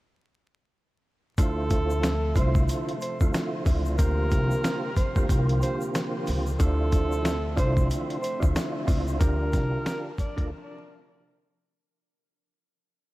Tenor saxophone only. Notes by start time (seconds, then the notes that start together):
1.39 A4
2.37 C5
3.02 C5
3.98 A#4
4.97 C5
5.62 C5
6.59 A4
7.59 C5
8.22 C5
9.19 A#4
10.20 D5